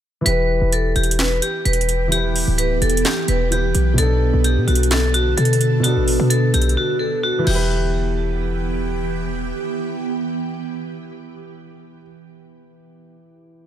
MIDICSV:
0, 0, Header, 1, 6, 480
1, 0, Start_track
1, 0, Key_signature, 1, "minor"
1, 0, Tempo, 465116
1, 267, Time_signature, 4, 2, 24, 8
1, 14105, End_track
2, 0, Start_track
2, 0, Title_t, "Vibraphone"
2, 0, Program_c, 0, 11
2, 266, Note_on_c, 0, 71, 116
2, 718, Note_off_c, 0, 71, 0
2, 752, Note_on_c, 0, 69, 81
2, 947, Note_off_c, 0, 69, 0
2, 989, Note_on_c, 0, 67, 79
2, 1185, Note_off_c, 0, 67, 0
2, 1228, Note_on_c, 0, 71, 91
2, 1424, Note_off_c, 0, 71, 0
2, 1466, Note_on_c, 0, 67, 86
2, 1663, Note_off_c, 0, 67, 0
2, 1707, Note_on_c, 0, 71, 79
2, 2158, Note_off_c, 0, 71, 0
2, 2188, Note_on_c, 0, 67, 102
2, 2639, Note_off_c, 0, 67, 0
2, 2664, Note_on_c, 0, 71, 80
2, 2862, Note_off_c, 0, 71, 0
2, 2907, Note_on_c, 0, 69, 82
2, 3104, Note_off_c, 0, 69, 0
2, 3149, Note_on_c, 0, 67, 88
2, 3345, Note_off_c, 0, 67, 0
2, 3390, Note_on_c, 0, 71, 84
2, 3585, Note_off_c, 0, 71, 0
2, 3633, Note_on_c, 0, 67, 87
2, 4081, Note_off_c, 0, 67, 0
2, 4110, Note_on_c, 0, 69, 112
2, 4560, Note_off_c, 0, 69, 0
2, 4588, Note_on_c, 0, 67, 86
2, 4784, Note_off_c, 0, 67, 0
2, 4826, Note_on_c, 0, 66, 86
2, 5023, Note_off_c, 0, 66, 0
2, 5069, Note_on_c, 0, 69, 87
2, 5265, Note_off_c, 0, 69, 0
2, 5304, Note_on_c, 0, 66, 86
2, 5502, Note_off_c, 0, 66, 0
2, 5546, Note_on_c, 0, 69, 93
2, 5997, Note_off_c, 0, 69, 0
2, 6023, Note_on_c, 0, 66, 96
2, 6476, Note_off_c, 0, 66, 0
2, 6502, Note_on_c, 0, 69, 83
2, 6701, Note_off_c, 0, 69, 0
2, 6750, Note_on_c, 0, 67, 85
2, 6945, Note_off_c, 0, 67, 0
2, 6990, Note_on_c, 0, 66, 87
2, 7185, Note_off_c, 0, 66, 0
2, 7219, Note_on_c, 0, 69, 79
2, 7419, Note_off_c, 0, 69, 0
2, 7465, Note_on_c, 0, 66, 93
2, 7692, Note_off_c, 0, 66, 0
2, 7707, Note_on_c, 0, 67, 91
2, 9346, Note_off_c, 0, 67, 0
2, 14105, End_track
3, 0, Start_track
3, 0, Title_t, "Grand piano"
3, 0, Program_c, 1, 0
3, 217, Note_on_c, 1, 52, 67
3, 245, Note_on_c, 1, 64, 60
3, 273, Note_on_c, 1, 67, 69
3, 301, Note_on_c, 1, 71, 68
3, 477, Control_c, 1, 64, 127
3, 2123, Note_off_c, 1, 52, 0
3, 2137, Note_off_c, 1, 64, 0
3, 2145, Note_on_c, 1, 52, 67
3, 2152, Note_off_c, 1, 67, 0
3, 2166, Note_off_c, 1, 71, 0
3, 2173, Note_on_c, 1, 64, 59
3, 2201, Note_on_c, 1, 67, 61
3, 2230, Note_on_c, 1, 71, 72
3, 3577, Note_off_c, 1, 52, 0
3, 3591, Note_off_c, 1, 64, 0
3, 3606, Note_off_c, 1, 67, 0
3, 3608, Note_on_c, 1, 52, 52
3, 3620, Note_off_c, 1, 71, 0
3, 3621, Note_on_c, 1, 64, 44
3, 3636, Note_on_c, 1, 67, 47
3, 3650, Note_on_c, 1, 71, 59
3, 4064, Note_on_c, 1, 47, 65
3, 4092, Note_on_c, 1, 59, 59
3, 4097, Note_off_c, 1, 52, 0
3, 4104, Note_off_c, 1, 64, 0
3, 4111, Note_off_c, 1, 67, 0
3, 4118, Note_off_c, 1, 71, 0
3, 4118, Control_c, 1, 64, 0
3, 4120, Note_on_c, 1, 62, 59
3, 4148, Note_on_c, 1, 69, 73
3, 4285, Control_c, 1, 64, 127
3, 5967, Note_off_c, 1, 47, 0
3, 5981, Note_off_c, 1, 59, 0
3, 5984, Note_on_c, 1, 47, 69
3, 5995, Note_off_c, 1, 62, 0
3, 6010, Note_off_c, 1, 69, 0
3, 6012, Note_on_c, 1, 59, 64
3, 6040, Note_on_c, 1, 62, 64
3, 6068, Note_on_c, 1, 69, 73
3, 7623, Note_on_c, 1, 52, 85
3, 7651, Note_off_c, 1, 47, 0
3, 7666, Note_off_c, 1, 59, 0
3, 7680, Note_off_c, 1, 62, 0
3, 7680, Note_on_c, 1, 64, 82
3, 7695, Note_off_c, 1, 69, 0
3, 7722, Control_c, 1, 64, 0
3, 7736, Note_on_c, 1, 67, 80
3, 7793, Note_on_c, 1, 71, 95
3, 7822, Control_c, 1, 64, 127
3, 7958, Control_c, 1, 64, 0
3, 8125, Control_c, 1, 64, 127
3, 12286, Note_off_c, 1, 52, 0
3, 12342, Note_off_c, 1, 64, 0
3, 12399, Note_off_c, 1, 67, 0
3, 12455, Note_off_c, 1, 71, 0
3, 14105, End_track
4, 0, Start_track
4, 0, Title_t, "Ambient pad"
4, 0, Program_c, 2, 92
4, 269, Note_on_c, 2, 52, 89
4, 269, Note_on_c, 2, 59, 81
4, 269, Note_on_c, 2, 67, 98
4, 4070, Note_off_c, 2, 52, 0
4, 4070, Note_off_c, 2, 67, 0
4, 4106, Note_on_c, 2, 50, 90
4, 4106, Note_on_c, 2, 69, 96
4, 7667, Note_off_c, 2, 59, 0
4, 7671, Note_off_c, 2, 50, 0
4, 7671, Note_off_c, 2, 69, 0
4, 7706, Note_on_c, 2, 67, 96
4, 7707, Note_on_c, 2, 52, 86
4, 7707, Note_on_c, 2, 59, 81
4, 12369, Note_off_c, 2, 52, 0
4, 12369, Note_off_c, 2, 67, 0
4, 12370, Note_off_c, 2, 59, 0
4, 14105, End_track
5, 0, Start_track
5, 0, Title_t, "808-style bass"
5, 0, Program_c, 3, 38
5, 268, Note_on_c, 3, 28, 108
5, 620, Note_off_c, 3, 28, 0
5, 634, Note_on_c, 3, 28, 106
5, 973, Note_off_c, 3, 28, 0
5, 987, Note_on_c, 3, 28, 101
5, 1448, Note_off_c, 3, 28, 0
5, 1707, Note_on_c, 3, 28, 107
5, 2520, Note_off_c, 3, 28, 0
5, 2555, Note_on_c, 3, 26, 107
5, 2893, Note_off_c, 3, 26, 0
5, 2907, Note_on_c, 3, 28, 106
5, 3137, Note_off_c, 3, 28, 0
5, 3387, Note_on_c, 3, 28, 107
5, 3848, Note_off_c, 3, 28, 0
5, 3866, Note_on_c, 3, 35, 106
5, 4097, Note_off_c, 3, 35, 0
5, 4107, Note_on_c, 3, 35, 111
5, 4459, Note_off_c, 3, 35, 0
5, 4474, Note_on_c, 3, 35, 110
5, 4713, Note_on_c, 3, 47, 109
5, 4729, Note_off_c, 3, 35, 0
5, 4821, Note_off_c, 3, 47, 0
5, 4826, Note_on_c, 3, 35, 102
5, 5518, Note_off_c, 3, 35, 0
5, 5547, Note_on_c, 3, 47, 105
5, 6154, Note_on_c, 3, 33, 100
5, 6170, Note_off_c, 3, 47, 0
5, 6382, Note_off_c, 3, 33, 0
5, 6394, Note_on_c, 3, 47, 105
5, 6733, Note_off_c, 3, 47, 0
5, 6747, Note_on_c, 3, 35, 103
5, 6977, Note_off_c, 3, 35, 0
5, 7707, Note_on_c, 3, 28, 108
5, 9826, Note_off_c, 3, 28, 0
5, 14105, End_track
6, 0, Start_track
6, 0, Title_t, "Drums"
6, 268, Note_on_c, 9, 42, 85
6, 371, Note_off_c, 9, 42, 0
6, 747, Note_on_c, 9, 42, 80
6, 850, Note_off_c, 9, 42, 0
6, 988, Note_on_c, 9, 42, 44
6, 1068, Note_off_c, 9, 42, 0
6, 1068, Note_on_c, 9, 42, 58
6, 1148, Note_off_c, 9, 42, 0
6, 1148, Note_on_c, 9, 42, 70
6, 1226, Note_off_c, 9, 42, 0
6, 1226, Note_on_c, 9, 42, 80
6, 1228, Note_on_c, 9, 38, 121
6, 1240, Note_on_c, 9, 39, 95
6, 1329, Note_off_c, 9, 42, 0
6, 1331, Note_off_c, 9, 38, 0
6, 1343, Note_off_c, 9, 39, 0
6, 1468, Note_on_c, 9, 42, 75
6, 1571, Note_off_c, 9, 42, 0
6, 1708, Note_on_c, 9, 42, 64
6, 1788, Note_off_c, 9, 42, 0
6, 1788, Note_on_c, 9, 42, 67
6, 1868, Note_off_c, 9, 42, 0
6, 1868, Note_on_c, 9, 42, 66
6, 1947, Note_off_c, 9, 42, 0
6, 1947, Note_on_c, 9, 42, 81
6, 2050, Note_off_c, 9, 42, 0
6, 2188, Note_on_c, 9, 42, 87
6, 2291, Note_off_c, 9, 42, 0
6, 2431, Note_on_c, 9, 46, 79
6, 2535, Note_off_c, 9, 46, 0
6, 2667, Note_on_c, 9, 42, 85
6, 2770, Note_off_c, 9, 42, 0
6, 2908, Note_on_c, 9, 42, 62
6, 2988, Note_off_c, 9, 42, 0
6, 2988, Note_on_c, 9, 42, 59
6, 3067, Note_off_c, 9, 42, 0
6, 3067, Note_on_c, 9, 42, 57
6, 3146, Note_off_c, 9, 42, 0
6, 3146, Note_on_c, 9, 42, 79
6, 3147, Note_on_c, 9, 38, 124
6, 3159, Note_on_c, 9, 39, 95
6, 3249, Note_off_c, 9, 42, 0
6, 3251, Note_off_c, 9, 38, 0
6, 3262, Note_off_c, 9, 39, 0
6, 3387, Note_on_c, 9, 42, 71
6, 3490, Note_off_c, 9, 42, 0
6, 3630, Note_on_c, 9, 42, 76
6, 3734, Note_off_c, 9, 42, 0
6, 3865, Note_on_c, 9, 42, 78
6, 3969, Note_off_c, 9, 42, 0
6, 4107, Note_on_c, 9, 42, 87
6, 4210, Note_off_c, 9, 42, 0
6, 4586, Note_on_c, 9, 42, 83
6, 4689, Note_off_c, 9, 42, 0
6, 4827, Note_on_c, 9, 42, 43
6, 4907, Note_off_c, 9, 42, 0
6, 4907, Note_on_c, 9, 42, 58
6, 4987, Note_off_c, 9, 42, 0
6, 4987, Note_on_c, 9, 42, 71
6, 5065, Note_off_c, 9, 42, 0
6, 5065, Note_on_c, 9, 42, 79
6, 5067, Note_on_c, 9, 38, 117
6, 5079, Note_on_c, 9, 39, 96
6, 5168, Note_off_c, 9, 42, 0
6, 5170, Note_off_c, 9, 38, 0
6, 5182, Note_off_c, 9, 39, 0
6, 5306, Note_on_c, 9, 42, 77
6, 5410, Note_off_c, 9, 42, 0
6, 5547, Note_on_c, 9, 42, 65
6, 5627, Note_off_c, 9, 42, 0
6, 5627, Note_on_c, 9, 42, 65
6, 5707, Note_off_c, 9, 42, 0
6, 5707, Note_on_c, 9, 42, 62
6, 5786, Note_off_c, 9, 42, 0
6, 5786, Note_on_c, 9, 42, 80
6, 5889, Note_off_c, 9, 42, 0
6, 6027, Note_on_c, 9, 42, 90
6, 6131, Note_off_c, 9, 42, 0
6, 6271, Note_on_c, 9, 46, 77
6, 6374, Note_off_c, 9, 46, 0
6, 6506, Note_on_c, 9, 42, 81
6, 6609, Note_off_c, 9, 42, 0
6, 6747, Note_on_c, 9, 42, 73
6, 6827, Note_off_c, 9, 42, 0
6, 6827, Note_on_c, 9, 42, 55
6, 6907, Note_off_c, 9, 42, 0
6, 6907, Note_on_c, 9, 42, 42
6, 7010, Note_off_c, 9, 42, 0
6, 7707, Note_on_c, 9, 49, 86
6, 7810, Note_off_c, 9, 49, 0
6, 14105, End_track
0, 0, End_of_file